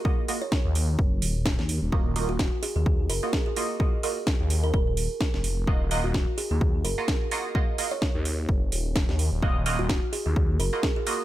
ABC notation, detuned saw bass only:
X:1
M:4/4
L:1/16
Q:"Swing 16ths" 1/4=128
K:Ebm
V:1 name="Detuned saw bass" clef=bass
z4 z E,,3 G,,,2 E,,,3 E,,2 E,,, | E,,,3 E,,,2 z2 E,,3 G,,, z4 z | z4 z E,,3 E,,,3 z2 F,,,3 | E,,,3 E,,,2 z2 E,,3 G,,, z4 z |
z4 z E,,3 G,,,2 E,,,3 E,,2 E,,, | E,,,3 E,,,2 z2 E,,3 G,,, z4 z |]